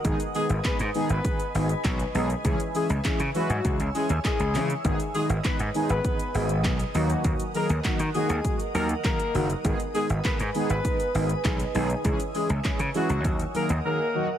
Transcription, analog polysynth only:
\new Staff \with { instrumentName = "Analog polysynth" } { \time 4/4 \key gis \minor \tempo 4 = 100 <dis gis b dis' gis'>8 <dis gis b dis' gis'>8 <dis gis b dis' gis'>8 <dis gis b dis' gis'>8 <dis gis b dis' gis'>8 <dis gis b dis' gis'>8 <dis gis b dis' fis'>8 <dis gis b dis' gis'>8 | <e gis cis' e' gis'>8 <e gis cis' e' gis'>8 <e gis cis' e' gis'>8 <e gis cis' e' b'>8 <e gis cis' e' gis'>8 <e gis cis' e' gis'>8 <e gis cis' e' ais'>8 <e gis cis' e' gis'>8 | <dis gis b dis' gis'>8 <dis gis b dis' fis'>8 <dis gis b dis' b'>8 <dis gis b dis' gis'>8 <dis gis b dis' gis'>8 <dis gis b dis' gis'>8 <dis gis b dis' gis'>8 <dis fis ais dis' fis'>8~ | <dis fis ais dis' fis'>8 <dis fis ais dis' gis'>8 <dis fis ais dis' fis'>8 <dis fis ais dis' fis'>8 <dis fis ais dis' fis'>8 <dis fis ais dis' fis'>8 <dis fis ais dis' gis'>8 <dis fis ais dis' fis'>8 |
<dis gis b dis' gis'>8 <dis gis b dis' gis'>8 <dis gis b dis' ais'>8 <dis gis b dis' gis'>8 <dis gis b dis' ais'>8 <dis gis b dis' gis'>8 <dis gis b dis' gis'>8 <dis gis b dis' gis'>8 | <e gis cis' e' gis'>8 <e gis cis' e' gis'>8 <e gis cis' e' gis'>8 <e gis cis' e' gis'>8 <dis fis ais dis' fis'>8 <dis fis ais dis' gis'>8 <dis fis ais dis' gis'>8 <dis fis ais dis' fis'>8 | }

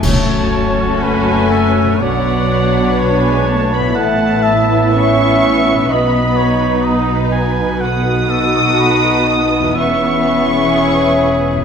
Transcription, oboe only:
\new Staff \with { instrumentName = "Oboe" } { \time 4/4 \key b \dorian \tempo 4 = 62 cis''4 b'8 a'8 d''4 cis''4 | fis''8 e''4. dis''8 cis''8 dis''8 gis''8 | fis''8 a'8 b'8 dis''8 e''8 r8 gis'4 | }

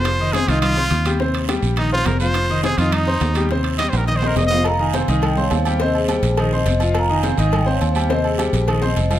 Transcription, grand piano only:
\new Staff \with { instrumentName = "Grand piano" } { \time 4/4 \key f \minor \tempo 4 = 209 <f f' f''>8 <ees ees' ees''>8 <c c' c''>8 <ees ees' ees''>4 <c' c'' c'''>4 <g g' g''>8 | <c c' c''>4 <g g' g''>4 <ees ees' ees''>8 <c' c'' c'''>4 <f f' f''>8~ | <f f' f''>8 <ees ees' ees''>8 <c c' c''>8 <ees ees' ees''>4 <c' c'' c'''>4 <g g' g''>8 | <c c' c''>4 <g g' g''>4 <ees ees' ees''>8 <c' c'' c'''>4 <f f' f''>8 |
r8 <ees ees' ees''>8 <c c' c''>8 <ees ees' ees''>4 <c' c'' c'''>4 <g g' g''>8 | <c c' c''>4 <g g' g''>4 <ees ees' ees''>8 <c' c'' c'''>4 <f f' f''>8~ | <f f' f''>8 <ees ees' ees''>8 <c c' c''>8 <ees ees' ees''>4 <c' c'' c'''>4 <g g' g''>8 | <c c' c''>4 <g g' g''>4 <ees ees' ees''>8 <c' c'' c'''>4 <f f' f''>8 | }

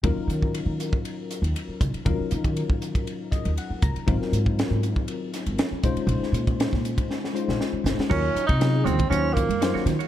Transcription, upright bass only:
\new Staff \with { instrumentName = "Upright bass" } { \clef bass \time 4/4 \key ees \dorian \tempo 4 = 119 ees,16 r16 ees8. ees8 r4 ees,16 r8 des,16 r16 | ees,16 r16 ees8. ees8 r4 ees,16 r8 des,16 r16 | aes,,16 r16 aes,8. aes,8 r4 aes,,16 r8 bes,,16 r16 | bes,,16 r16 bes,8. bes,8 r4 bes,,16 r8 aes,,16 r16 |
ees,8 r16 c8. ees,8 ees,8. ges,8 r16 ees8 | }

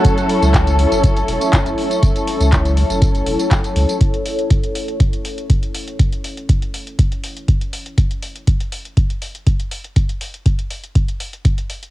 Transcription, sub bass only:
\new Staff \with { instrumentName = "Sub bass" } { \clef bass \time 4/4 \key fis \minor \tempo 4 = 121 fis,,16 r8 cis,4 fis,,8. e,,16 r8 fis,,16 r8 | fis,,16 r8 cis,4 fis,,8. e,,16 r8. cis,16 r16 | r1 | r1 |
r1 | r1 | }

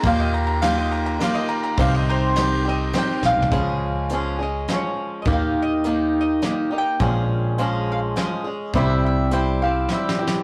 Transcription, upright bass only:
\new Staff \with { instrumentName = "Upright bass" } { \clef bass \time 3/4 \key des \lydian \tempo 4 = 103 ees,2 r4 | c,2 r8 bes,,16 c,16 | des,2 r4 | ees,2 r4 |
bes,,2 r4 | c,2 r4 | }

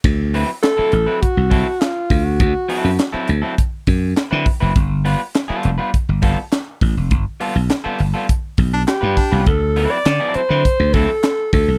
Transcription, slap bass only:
\new Staff \with { instrumentName = "Slap bass" } { \clef bass \time 4/4 \key d \mixolydian \tempo 4 = 102 d,8. r8. a,,16 r8 c,8 r8. d,8 | d,16 r8 fis,16 r8 d,16 r8. fis,8 r16 d16 r16 fis,,16 | g,,8. r8. f,,16 r8 g,,8 r8. a,,16 f,,16 | g,,16 r8 b,,16 r8 g,,16 r8. b,,8 r16 g,16 r16 c,16 |
d,8. r16 d16 r8 d16 r16 d,8 r8. d,16 c,16 | }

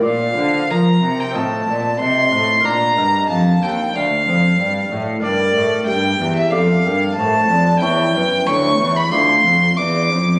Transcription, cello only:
\new Staff \with { instrumentName = "Cello" } { \clef bass \time 4/4 \key bes \major \tempo 4 = 92 bes,8 d8 f8 c8 a,8 bes,8 c8 a,8 | bes,8 g,8 f,8 ees,8 d,8 f,8 g,8 a,8 | \key d \minor g,8 a,8 g,8 e,8 f,8 g,8 a,8 f,8 | e,8 fis,8 d,8 e,8 d,8 f,8 e,8 f,8 | }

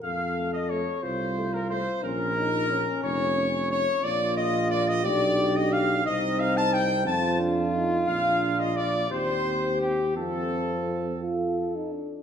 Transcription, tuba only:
\new Staff \with { instrumentName = "Tuba" } { \clef bass \time 6/8 \key bes \minor \tempo 4. = 59 f,4. c,4. | bes,,4. f,,4. | \key bes \major bes,,4. b,,4. | c,4. f,4. |
bes,,4. ees,4. | f,2~ f,8 r8 | }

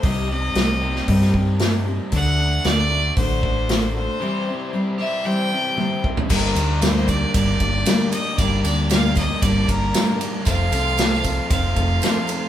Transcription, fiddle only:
\new Staff \with { instrumentName = "Fiddle" } { \time 4/4 \key g \minor \tempo 4 = 115 ees''8 ees''2 r4. | fis''4 d''4 c''4. c''8~ | c''4 r8 e''8 g''4. r8 | bes'4 c''8 d''8 d''4. ees''8 |
d''8 d''8 f''8 ees''8 d''8 bes'4 r8 | f''2 f''2 | }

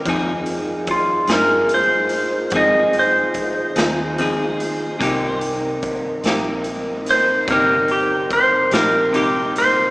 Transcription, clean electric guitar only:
\new Staff \with { instrumentName = "Clean electric guitar" } { \time 12/8 \key c \minor \tempo 4. = 48 <f c' ees' aes'>8 r4 <c' ees' aes'>8 r4 <f c' ees' aes'>8 r4 <c' ees' aes'>8 <f c' ees' aes'>8 r8 | <c bes ees' g'>8 r4 <bes ees' g'>8 r4 <c bes ees' g'>8 r4 <bes ees' g'>8 <c bes ees' g'>8 r8 | }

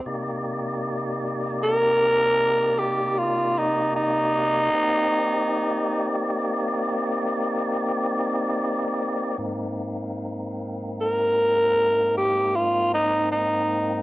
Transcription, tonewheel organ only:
\new Staff \with { instrumentName = "Tonewheel organ" } { \time 12/8 \key c \minor \tempo 4. = 51 <c bes ees' g' d''>1. | <bes c' ees' g' d''>1. | <aes, bes c' ees'>1. | }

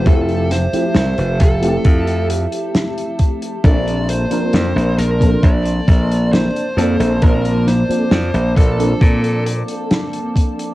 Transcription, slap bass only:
\new Staff \with { instrumentName = "Slap bass" } { \clef bass \time 4/4 \key bes \lydian \tempo 4 = 67 f,,8. r16 c,16 f,,16 f,,8 f,8. r4 r16 | bes,,8. r16 f,16 bes,,16 bes,,8 bes,,8 bes,,8. r16 f,16 bes,,16 | bes,,8. r16 f,16 bes,,16 bes,,8 bes,8. r4 r16 | }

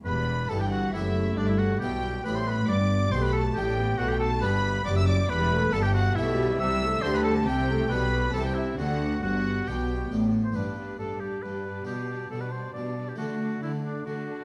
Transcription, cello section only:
\new Staff \with { instrumentName = "Cello section" } { \clef bass \time 3/4 \key g \major \tempo 4 = 137 e,4 g,4 fis,4 | g,4 b,4 a,4 | g,4 b,4 a,4 | b,4 g,4 fis,4 |
e,4 g,4 b,4 | c4 d4 c4 | b,4 c4 d4 | g,4 b,4 a,4 |
g,4 g,4 g,4 | b,4 b,4 b,4 | d4 d4 d4 | }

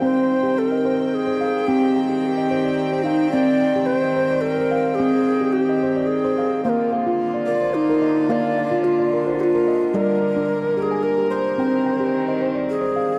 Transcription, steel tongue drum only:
<<
  \new Staff \with { instrumentName = "Steel tongue drum" } { \time 3/4 \key c \minor \tempo 4 = 109 << { <f'' g''>8. r8 ees''8. r8 f''8 | g''8 g''8. ees''8 d''8. f''8 | g''8 g''8. ees''8 d''8. f''8 | g''8. r8 ees''8 d''8. f''8 |
f''8 f''8. d''8 c''8. ees''8 | f''8 f''8. d''8 c''8. ees''8 | d''8 d''8. bes'8 aes''8. c''8 | g''8 g''8. ees''8 d''8. f''8 | } \\ { c'8 r16 g'8 r16 c''8 r16 c''8 r16 | c'8 r16 g'8 r16 c''8 r16 c''8 r16 | c'8 r16 g'8 r16 c''8 r16 c''8 r16 | c'8 r16 g'8 r16 c''8 r16 c''8 r16 |
r8. f'8 r16 bes'8 r16 bes'8 r16 | bes8 r16 f'8 r16 bes'8 r16 bes'8 r16 | r8. d'8 r16 g'8 r16 g'8 r16 | r8. g'8 r16 c''8 r16 c''8 r16 | } >> }
  \new Staff \with { instrumentName = "Steel tongue drum" } { \time 3/4 \key c \minor r2. | r2. | r2. | r2. |
bes2. | r2. | g2. | c'2. | }
>>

